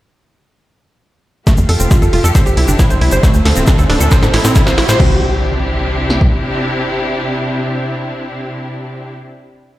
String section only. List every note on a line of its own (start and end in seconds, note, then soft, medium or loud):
1.47 2.34 A3 medium
1.47 2.34 F4 medium
1.47 3.22 G4 medium
2.35 3.22 C3 medium
2.35 4.97 C4 medium
2.35 3.22 D4 medium
2.35 4.97 E4 medium
3.23 4.11 D3 medium
3.23 4.98 A3 medium
3.23 4.11 F4 medium
5.00 9.13 C3 medium
5.00 9.13 C4 medium
5.00 9.13 D4 medium
5.00 9.13 E4 medium
5.00 9.13 G4 medium